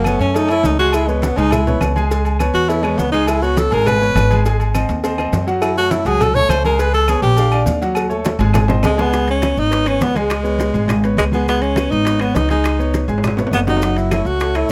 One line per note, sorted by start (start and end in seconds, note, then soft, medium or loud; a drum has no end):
0.00 0.15 F#1 medium
0.04 0.31 A3 medium
0.04 0.20 B3 medium
0.04 0.31 A4 medium
0.04 0.31 C#5 medium
0.04 cowbell medium
0.04 high conga medium
0.04 low timbale medium
0.04 low agogo loud
0.04 claves medium
0.04 maracas medium
0.19 0.61 F#2 medium
0.19 0.38 C#4 medium
0.19 cowbell medium
0.19 high conga soft
0.19 maracas soft
0.34 0.47 A3 medium
0.34 0.51 D#4 loud
0.34 0.48 A4 medium
0.34 0.48 C#5 medium
0.34 cowbell loud
0.34 high conga soft
0.34 low agogo medium
0.34 maracas medium
0.48 0.75 A3 medium
0.48 0.67 E4 loud
0.48 0.75 A4 medium
0.48 0.75 C#5 medium
0.48 high conga soft
0.48 low agogo loud
0.48 claves medium
0.48 maracas soft
0.63 1.32 C#2 medium
0.63 0.79 D#4 medium
0.63 cowbell medium
0.63 high conga medium
0.63 low timbale medium
0.63 maracas medium
0.79 1.03 G#3 medium
0.79 0.96 F#4 loud
0.79 1.04 G#4 medium
0.79 1.04 G#5 loud
0.79 cowbell medium
0.79 high conga soft
0.79 maracas soft
0.92 1.10 E4 medium
0.92 cowbell loud
0.92 high conga soft
0.92 low agogo loud
0.92 claves medium
0.92 maracas medium
1.08 1.25 G#3 medium
1.08 1.33 B3 medium
1.08 1.33 B4 medium
1.08 1.33 C#5 medium
1.08 high conga soft
1.08 maracas soft
1.22 1.39 B3 medium
1.22 cowbell medium
1.22 high conga loud
1.22 low timbale medium
1.22 low agogo medium
1.22 maracas medium
1.36 1.78 C#2 loud
1.36 1.61 G#3 medium
1.36 1.54 D#4 loud
1.36 1.61 G#4 medium
1.36 1.62 G#5 medium
1.36 cowbell medium
1.36 low agogo medium
1.36 maracas soft
1.51 1.82 E4 medium
1.51 cowbell loud
1.51 high conga soft
1.51 low conga medium
1.51 low agogo loud
1.51 claves medium
1.51 maracas medium
1.67 1.91 B3 medium
1.67 1.91 B4 medium
1.67 1.91 C#5 medium
1.67 high conga soft
1.67 low conga medium
1.67 maracas soft
1.81 2.49 C#2 medium
1.81 cowbell medium
1.81 high conga medium
1.81 low timbale medium
1.81 low agogo loud
1.81 claves medium
1.81 maracas medium
1.96 2.08 G#3 medium
1.96 2.08 G#4 medium
1.96 2.09 G#5 medium
1.96 high conga medium
1.96 low agogo medium
1.96 maracas soft
2.10 2.35 G#3 medium
2.10 2.35 G#4 medium
2.10 2.35 G#5 medium
2.10 cowbell loud
2.10 high conga soft
2.10 low agogo medium
2.10 maracas medium
2.25 high conga soft
2.25 low agogo medium
2.25 maracas soft
2.39 2.64 B3 medium
2.39 2.65 B4 medium
2.39 2.64 C#5 medium
2.39 cowbell medium
2.39 high conga medium
2.39 low timbale medium
2.39 low agogo loud
2.39 claves medium
2.39 maracas medium
2.54 2.95 E2 medium
2.54 2.71 F#4 loud
2.54 cowbell medium
2.54 high conga soft
2.54 maracas soft
2.69 2.81 B3 medium
2.69 2.85 E4 medium
2.69 2.81 B4 medium
2.69 2.81 C#5 medium
2.69 cowbell loud
2.69 high conga soft
2.69 low agogo medium
2.69 maracas medium
2.83 2.99 G#3 medium
2.83 3.08 B3 medium
2.83 3.08 B4 medium
2.83 3.08 C#5 medium
2.83 high conga soft
2.83 low agogo loud
2.83 claves medium
2.83 maracas soft
2.98 3.66 C#2 medium
2.98 3.11 B3 medium
2.98 cowbell medium
2.98 high conga medium
2.98 low timbale medium
2.98 maracas medium
3.12 3.37 G#3 medium
3.12 3.29 D#4 loud
3.12 3.37 G#4 medium
3.12 3.37 G#5 medium
3.12 cowbell medium
3.12 high conga soft
3.12 maracas soft
3.27 3.45 E4 medium
3.27 cowbell loud
3.27 high conga soft
3.27 low agogo loud
3.27 claves medium
3.27 maracas medium
3.42 3.66 B3 medium
3.42 3.59 F#4 medium
3.42 3.66 B4 medium
3.42 3.67 C#5 medium
3.42 high conga soft
3.42 maracas soft
3.57 3.75 A4 loud
3.57 cowbell medium
3.57 high conga loud
3.57 low timbale medium
3.57 low agogo medium
3.57 maracas medium
3.71 4.13 G#1 loud
3.71 3.96 G#3 medium
3.71 3.96 G#4 medium
3.71 3.88 A#4 loud
3.71 3.96 G#5 medium
3.71 cowbell medium
3.71 low agogo medium
3.71 maracas soft
3.86 4.45 B4 loud
3.86 cowbell loud
3.86 high conga soft
3.86 low conga medium
3.86 low agogo loud
3.86 claves medium
3.86 maracas medium
4.01 4.25 B3 medium
4.01 4.25 B4 medium
4.01 4.26 C#5 medium
4.01 high conga soft
4.01 maracas soft
4.15 4.83 G#1 medium
4.15 cowbell medium
4.15 high conga medium
4.15 low timbale medium
4.15 low agogo loud
4.15 claves medium
4.15 maracas medium
4.30 4.42 G#3 medium
4.30 4.42 G#4 medium
4.30 4.43 G#5 medium
4.30 high conga medium
4.30 low agogo medium
4.30 maracas soft
4.45 4.69 G#3 medium
4.45 4.69 G#4 medium
4.45 4.69 G#5 medium
4.45 cowbell loud
4.45 high conga soft
4.45 low agogo medium
4.45 maracas medium
4.60 high conga soft
4.60 low agogo medium
4.60 maracas soft
4.74 4.98 C4 medium
4.74 4.98 C5 medium
4.74 4.99 D#5 medium
4.74 cowbell medium
4.74 high conga medium
4.74 low timbale medium
4.74 low agogo loud
4.74 claves medium
4.74 maracas medium
4.89 5.30 D#2 loud
4.89 cowbell medium
4.89 high conga soft
4.89 maracas soft
5.04 5.16 C4 medium
5.04 5.16 C5 medium
5.04 5.16 D#5 medium
5.04 cowbell loud
5.04 high conga soft
5.04 low agogo medium
5.04 maracas medium
5.18 5.42 C4 medium
5.18 5.43 C5 medium
5.18 5.43 D#5 medium
5.18 high conga soft
5.18 low agogo loud
5.18 claves medium
5.18 maracas soft
5.32 6.00 F#2 medium
5.32 cowbell medium
5.32 high conga medium
5.32 low timbale medium
5.32 maracas medium
5.47 5.71 F#3 medium
5.47 5.71 F#4 medium
5.47 5.72 F#5 loud
5.47 cowbell medium
5.47 high conga soft
5.47 maracas soft
5.61 5.75 E4 medium
5.61 cowbell loud
5.61 high conga soft
5.61 low agogo loud
5.61 claves medium
5.61 maracas medium
5.77 6.01 A3 medium
5.77 5.93 F#4 loud
5.77 6.01 A4 medium
5.77 6.01 C#5 medium
5.77 high conga soft
5.77 maracas soft
5.91 6.08 E4 medium
5.91 cowbell medium
5.91 high conga loud
5.91 low timbale medium
5.91 low agogo medium
5.91 maracas medium
6.05 6.46 C#2 medium
6.05 6.30 F#3 medium
6.05 6.30 F#4 medium
6.05 6.23 G#4 loud
6.05 6.30 F#5 medium
6.05 cowbell medium
6.05 low agogo medium
6.05 maracas soft
6.20 6.37 A4 loud
6.20 cowbell loud
6.20 high conga soft
6.20 low conga medium
6.20 low agogo loud
6.20 claves medium
6.20 maracas medium
6.35 6.60 A3 medium
6.35 6.60 A4 medium
6.35 6.51 C#5 loud
6.35 6.60 C#5 medium
6.35 high conga soft
6.35 low conga medium
6.35 maracas soft
6.49 7.17 C#2 medium
6.49 6.65 C5 loud
6.49 cowbell medium
6.49 high conga medium
6.49 low timbale medium
6.49 low agogo loud
6.49 claves medium
6.49 maracas medium
6.65 6.77 G#3 medium
6.65 6.77 G#4 loud
6.65 6.81 A#4 loud
6.65 6.77 G#5 loud
6.65 high conga medium
6.65 low agogo medium
6.65 maracas soft
6.79 7.04 G#3 medium
6.79 7.04 G#4 medium
6.79 6.94 B4 loud
6.79 7.04 G#5 medium
6.79 cowbell loud
6.79 high conga soft
6.79 low agogo medium
6.79 maracas medium
6.93 7.11 A4 loud
6.93 high conga soft
6.93 low agogo medium
6.93 maracas soft
7.08 7.33 B3 medium
7.08 7.22 G#4 medium
7.08 7.33 B4 medium
7.08 7.33 C#5 medium
7.08 cowbell medium
7.08 high conga medium
7.08 low timbale medium
7.08 low agogo loud
7.08 claves medium
7.08 maracas medium
7.22 7.63 A#1 loud
7.22 7.64 G4 loud
7.22 cowbell medium
7.22 high conga soft
7.22 maracas soft
7.37 7.50 D4 medium
7.37 7.51 D5 medium
7.37 7.51 F5 medium
7.37 cowbell loud
7.37 high conga soft
7.37 low agogo medium
7.37 maracas medium
7.52 7.77 D4 medium
7.52 7.77 D5 medium
7.52 7.77 F5 medium
7.52 high conga soft
7.52 low agogo loud
7.52 claves medium
7.52 maracas soft
7.66 8.34 D#2 medium
7.66 cowbell medium
7.66 high conga medium
7.66 low timbale medium
7.66 maracas medium
7.81 8.06 F#3 loud
7.81 8.06 F#4 loud
7.81 8.06 F#5 loud
7.81 cowbell medium
7.81 high conga soft
7.81 maracas soft
7.95 cowbell loud
7.95 high conga soft
7.95 low agogo loud
7.95 claves medium
7.95 maracas medium
8.09 8.34 A3 medium
8.09 8.34 A4 medium
8.09 8.34 C#5 medium
8.09 high conga soft
8.09 maracas soft
8.25 cowbell medium
8.25 high bongo medium
8.25 high conga loud
8.25 low timbale medium
8.25 low agogo medium
8.25 maracas medium
8.39 8.80 G#1 loud
8.39 8.64 G#3 medium
8.39 8.64 G#4 medium
8.39 8.64 G#5 medium
8.39 cowbell medium
8.39 high bongo medium
8.39 low agogo medium
8.39 maracas soft
8.53 cowbell loud
8.53 low bongo loud
8.53 high conga soft
8.53 low conga medium
8.53 high timbale medium
8.53 low agogo loud
8.53 claves medium
8.53 maracas medium
8.68 8.93 C4 medium
8.68 8.93 C5 medium
8.68 8.93 D#5 medium
8.68 low bongo loud
8.68 high conga soft
8.68 low conga medium
8.68 high timbale medium
8.68 maracas soft
8.83 9.51 C#2 loud
8.83 9.03 G#3 loud
8.83 cowbell medium
8.83 low bongo loud
8.83 high conga medium
8.83 low timbale loud
8.83 low agogo loud
8.83 claves medium
8.83 maracas medium
8.97 9.10 G#3 loud
8.97 9.29 B3 loud
8.97 9.10 G#4 loud
8.97 9.10 G#5 medium
8.97 low bongo medium
8.97 low timbale medium
8.97 low agogo medium
8.97 maracas soft
9.13 9.37 G#3 medium
9.13 9.37 G#4 medium
9.13 9.37 G#5 medium
9.13 high bongo medium
9.13 high conga soft
9.13 maracas medium
9.28 9.61 C#4 loud
9.28 high conga soft
9.28 high timbale medium
9.28 maracas soft
9.42 9.66 B3 medium
9.42 9.67 B4 medium
9.42 9.67 C#5 medium
9.42 high bongo medium
9.42 high conga medium
9.42 high timbale medium
9.42 claves medium
9.42 maracas medium
9.57 9.98 G#1 medium
9.57 9.90 D#4 loud
9.57 high conga soft
9.57 maracas soft
9.71 9.83 B3 medium
9.71 9.84 B4 medium
9.71 9.84 C#5 medium
9.71 high bongo medium
9.71 high conga soft
9.71 high timbale medium
9.71 maracas medium
9.85 10.10 B3 medium
9.85 10.05 C#4 loud
9.85 10.10 B4 medium
9.85 10.10 C#5 medium
9.85 high conga soft
9.85 high timbale medium
9.85 claves medium
9.85 maracas soft
10.00 10.69 C#2 medium
10.00 10.18 B3 medium
10.00 high bongo medium
10.00 low bongo medium
10.00 high conga medium
10.00 low timbale medium
10.00 maracas medium
10.15 10.40 G#3 medium
10.15 11.04 G#3 medium
10.15 10.40 G#4 medium
10.15 10.40 G#5 medium
10.15 high conga medium
10.15 high timbale medium
10.15 maracas soft
10.30 high bongo medium
10.30 high conga soft
10.30 high timbale medium
10.30 claves medium
10.30 maracas medium
10.44 10.68 B3 medium
10.44 10.69 B4 medium
10.44 10.69 C#5 medium
10.44 high bongo soft
10.44 high conga soft
10.44 maracas soft
10.59 high bongo medium
10.59 high conga medium
10.59 high timbale medium
10.59 maracas medium
10.73 11.15 G#1 loud
10.73 10.98 G#3 medium
10.73 10.98 G#4 medium
10.73 10.98 G#5 medium
10.73 high bongo soft
10.73 high conga soft
10.73 maracas soft
10.88 high bongo medium
10.88 high conga soft
10.88 low conga medium
10.88 high timbale loud
10.88 claves medium
10.88 maracas medium
11.03 11.28 B3 medium
11.03 11.28 B4 medium
11.03 11.29 C#5 medium
11.03 high conga soft
11.03 high timbale medium
11.03 maracas soft
11.17 11.86 C#2 medium
11.17 11.25 G#3 medium
11.17 high bongo medium
11.17 low bongo medium
11.17 high conga medium
11.17 high timbale medium
11.17 claves medium
11.17 maracas medium
11.32 11.45 G#3 medium
11.32 11.47 B3 medium
11.32 11.45 G#4 medium
11.32 11.45 G#5 medium
11.32 high bongo soft
11.32 high conga medium
11.32 maracas soft
11.47 11.72 G#3 medium
11.47 11.63 B3 medium
11.47 11.72 G#4 medium
11.47 11.72 G#5 medium
11.47 high bongo medium
11.47 high conga soft
11.47 maracas medium
11.62 11.93 C#4 loud
11.62 high conga soft
11.62 high timbale medium
11.62 maracas soft
11.76 12.01 B3 medium
11.76 12.01 B4 medium
11.76 12.01 C#5 medium
11.76 high bongo medium
11.76 high conga medium
11.76 high timbale medium
11.76 claves medium
11.76 maracas medium
11.91 12.33 G#1 loud
11.91 12.23 D#4 loud
11.91 high conga soft
11.91 maracas soft
12.05 12.18 B3 medium
12.05 12.18 B4 medium
12.05 12.18 C#5 medium
12.05 high bongo medium
12.05 high conga soft
12.05 high timbale medium
12.05 maracas medium
12.20 12.45 B3 medium
12.20 12.37 B3 medium
12.20 12.45 B4 medium
12.20 12.45 C#5 medium
12.20 high conga soft
12.20 high timbale medium
12.20 claves medium
12.20 maracas soft
12.35 13.04 C#2 medium
12.35 12.50 D#4 loud
12.35 high bongo medium
12.35 low bongo medium
12.35 high conga medium
12.35 low timbale medium
12.35 maracas medium
12.49 12.74 G#3 medium
12.49 13.07 D#4 medium
12.49 12.74 G#4 medium
12.49 12.74 G#5 medium
12.49 high conga medium
12.49 high timbale medium
12.49 maracas soft
12.64 high bongo medium
12.64 high conga soft
12.64 high timbale medium
12.64 claves medium
12.64 maracas medium
12.79 13.04 B3 medium
12.79 13.04 B4 medium
12.79 13.04 C#5 medium
12.79 high bongo soft
12.79 high conga soft
12.79 maracas soft
12.94 high bongo medium
12.94 high conga medium
12.94 high timbale medium
12.94 maracas medium
13.08 13.49 G#1 medium
13.08 13.32 G#3 medium
13.08 13.33 G#4 medium
13.08 13.33 G#5 medium
13.08 high bongo soft
13.08 high conga soft
13.08 high timbale medium
13.08 maracas soft
13.18 high timbale medium
13.24 high bongo medium
13.24 high conga soft
13.24 low conga medium
13.24 high timbale medium
13.24 claves medium
13.24 maracas medium
13.37 13.62 B3 medium
13.37 13.62 B4 medium
13.37 13.62 C#5 medium
13.37 high bongo medium
13.37 high conga soft
13.37 low conga medium
13.37 low timbale medium
13.37 maracas soft
13.47 low timbale medium
13.51 14.20 F#1 medium
13.51 13.61 B3 medium
13.51 high bongo medium
13.51 high conga medium
13.51 claves medium
13.51 maracas medium
13.57 low timbale medium
13.67 13.80 F#3 medium
13.67 13.99 D#4 medium
13.67 13.80 F#4 medium
13.67 13.80 F#5 medium
13.67 low bongo medium
13.67 high conga medium
13.67 low timbale medium
13.67 maracas soft
13.77 low timbale medium
13.82 14.07 F#3 medium
13.82 14.07 F#4 medium
13.82 14.07 F#5 medium
13.82 high bongo medium
13.82 high conga soft
13.82 maracas medium
13.96 14.12 E4 medium
13.96 high conga soft
13.96 high timbale medium
13.96 maracas soft
14.11 14.37 A3 medium
14.11 14.28 E4 medium
14.11 14.36 A4 medium
14.11 14.37 C#5 medium
14.11 high bongo medium
14.11 high conga medium
14.11 high timbale medium
14.11 claves medium
14.11 maracas medium
14.25 14.67 C#2 medium
14.25 14.58 F#4 loud
14.25 high conga soft
14.25 maracas soft
14.40 14.53 A3 medium
14.40 14.54 A4 medium
14.40 14.54 C#5 medium
14.40 high bongo medium
14.40 high conga soft
14.40 high timbale medium
14.40 maracas medium
14.55 14.72 A3 medium
14.55 14.72 E4 medium
14.55 14.72 A4 medium
14.55 14.72 C#5 medium
14.55 high conga soft
14.55 high timbale medium
14.55 claves medium
14.55 maracas soft